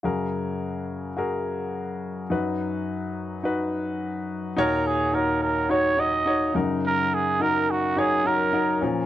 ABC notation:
X:1
M:4/4
L:1/8
Q:"Swing 16ths" 1/4=106
K:F#
V:1 name="Trumpet"
z8 | z8 | A G A A c d2 z | A G A F G A2 z |]
V:2 name="Grand piano"
[FGA]4 [FGA]4 | [DFB]4 [DFB]4 | [DFc]2 [DFc]2 [DFc] [DFc] [DFc] [DFA]- | [DFA]2 [DFA]2 [DFc] [DFA] [DFA] [CEA] |]
V:3 name="Grand piano" clef=bass
[F,,C,]8 | [F,,F,]8 | [D,,A,,]6- [D,,A,,] [F,,C,]- | [F,,C,]6- [F,,C,] [A,,E,] |]